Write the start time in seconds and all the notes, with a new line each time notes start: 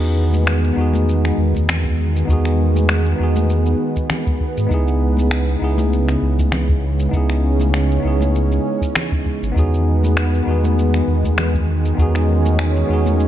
Already playing: E2 D#3 G#3 B3 D#4 F#4 G#4
0.04 shaker
0.33 high conga, shaker
0.47 finger snap, shaker
0.64 shaker
0.73 E2 B3 D#4
0.78 F#4 G#4
0.93 high conga, shaker
1.09 shaker
1.25 finger snap, shaker
1.38 E2
1.54 kick, high conga, shaker
1.69 finger snap, low conga, shaker
1.85 kick, shaker
2.16 shaker
2.25 E2 B3 D#4, kick
2.30 F#4 G#4, shaker
2.45 finger snap, shaker
2.75 high conga, shaker
2.89 finger snap, shaker
3.06 shaker
3.16 E2 B3 D#4
3.21 F#4 G#4
3.36 high conga, shaker
3.50 shaker
3.66 shaker
3.96 kick, shaker
4.10 finger snap, low conga, shaker
4.27 kick, shaker
4.41 kick
4.57 G#2, shaker
4.67 B3 D#4
4.71 C#2 C#3 G#3 E4 G#4, kick, shaker
4.88 shaker
5.17 high conga, shaker
5.31 finger snap, shaker
5.49 shaker
5.57 B3 D#4
5.61 C#2 E4 G#4
5.78 high conga, shaker
5.93 shaker
6.09 finger snap, shaker
6.22 C#2
6.39 kick, high conga, shaker
6.52 finger snap, low conga, shaker
6.69 kick, shaker
7.00 shaker
7.09 B3 D#4
7.13 C#2 C#4 E4 G#4, kick, shaker
7.30 finger snap, shaker
7.60 high conga, shaker
7.74 finger snap, shaker
7.92 shaker
8.00 B3 D#4
8.04 C#2 E4 G#4
8.20 high conga, shaker
8.35 shaker
8.52 shaker
8.82 kick, shaker
8.95 finger snap, low conga, shaker
9.12 kick, shaker
9.26 kick
9.42 G#1, shaker
9.52 B3 D#4
9.56 E2 D#3 B3 F#4 G#4, kick, shaker
9.74 shaker
10.03 high conga, shaker
10.17 finger snap, shaker
10.35 shaker
10.43 E2 B3 D#4
10.48 F#4 G#4
10.64 high conga, shaker
10.79 shaker
10.94 finger snap, shaker
11.08 E2
11.24 kick, high conga, shaker
11.38 finger snap, low conga, shaker
11.55 kick, shaker
11.85 shaker
11.95 E2 B3 C#4 D#4, kick
11.99 F#4 G#4, shaker
12.15 finger snap, shaker
12.46 high conga, shaker
12.59 finger snap, shaker
12.76 shaker
12.86 E2 B3 D#4
12.91 F#4 G#4
13.06 high conga, shaker
13.20 shaker